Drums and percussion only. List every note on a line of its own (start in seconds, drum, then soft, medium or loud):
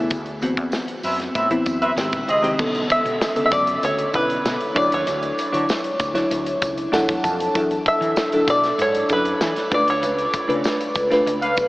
0.10 kick loud
0.10 closed hi-hat medium
0.10 tambourine soft
0.26 closed hi-hat soft
0.41 closed hi-hat medium
0.41 tambourine soft
0.57 kick medium
0.57 closed hi-hat soft
0.72 snare loud
0.72 tambourine medium
0.88 closed hi-hat medium
1.03 open hi-hat medium
1.03 tambourine medium
1.20 snare soft
1.20 closed hi-hat soft
1.35 kick medium
1.35 closed hi-hat medium
1.35 tambourine soft
1.51 closed hi-hat medium
1.66 kick medium
1.66 closed hi-hat medium
1.66 tambourine medium
1.82 closed hi-hat medium
1.97 snare loud
1.97 tambourine medium
2.12 kick medium
2.12 snare soft
2.12 closed hi-hat soft
2.29 closed hi-hat medium
2.29 tambourine soft
2.44 closed hi-hat medium
2.59 kick loud
2.59 crash medium
2.59 tambourine soft
2.75 closed hi-hat soft
2.90 kick loud
2.90 closed hi-hat medium
2.90 tambourine soft
3.06 closed hi-hat soft
3.21 snare loud
3.21 tambourine medium
3.36 closed hi-hat medium
3.52 kick loud
3.52 closed hi-hat medium
3.52 tambourine medium
3.67 closed hi-hat medium
3.83 closed hi-hat loud
3.83 tambourine soft
3.99 closed hi-hat medium
4.14 kick medium
4.14 closed hi-hat medium
4.14 tambourine medium
4.30 closed hi-hat soft
4.46 snare loud
4.46 tambourine medium
4.61 closed hi-hat medium
4.76 kick loud
4.76 closed hi-hat medium
4.76 tambourine soft
4.92 closed hi-hat medium
5.07 closed hi-hat medium
5.07 tambourine soft
5.23 closed hi-hat soft
5.38 closed hi-hat medium
5.38 tambourine soft
5.54 closed hi-hat medium
5.69 snare loud
5.69 tambourine medium
5.84 closed hi-hat medium
6.00 kick loud
6.00 closed hi-hat medium
6.00 tambourine medium
6.15 snare soft
6.15 closed hi-hat medium
6.31 closed hi-hat medium
6.46 closed hi-hat medium
6.62 kick medium
6.62 closed hi-hat medium
6.62 tambourine medium
6.78 closed hi-hat medium
6.93 snare loud
6.93 tambourine medium
7.09 kick loud
7.09 snare soft
7.09 closed hi-hat soft
7.24 kick medium
7.24 closed hi-hat medium
7.24 tambourine soft
7.40 closed hi-hat medium
7.55 kick loud
7.55 closed hi-hat medium
7.55 tambourine soft
7.71 closed hi-hat soft
7.86 kick loud
7.86 closed hi-hat medium
8.02 closed hi-hat medium
8.16 snare loud
8.16 tambourine medium
8.32 closed hi-hat soft
8.48 kick loud
8.48 closed hi-hat medium
8.48 tambourine medium
8.64 snare soft
8.64 closed hi-hat medium
8.79 closed hi-hat medium
8.79 tambourine soft
8.95 closed hi-hat medium
9.09 kick medium
9.09 closed hi-hat medium
9.09 tambourine medium
9.25 closed hi-hat medium
9.41 snare loud
9.41 tambourine medium
9.56 snare soft
9.56 closed hi-hat medium
9.72 kick loud
9.72 closed hi-hat medium
9.72 tambourine soft
9.88 closed hi-hat medium
10.03 closed hi-hat medium
10.03 tambourine soft
10.19 closed hi-hat soft
10.33 kick loud
10.33 closed hi-hat medium
10.33 tambourine soft
10.50 closed hi-hat soft
10.64 snare loud
10.64 tambourine medium
10.81 closed hi-hat medium
10.95 kick loud
10.95 closed hi-hat medium
10.95 tambourine medium
11.11 snare soft
11.11 closed hi-hat medium
11.27 closed hi-hat medium
11.42 closed hi-hat medium
11.56 kick medium
11.56 closed hi-hat medium
11.56 tambourine medium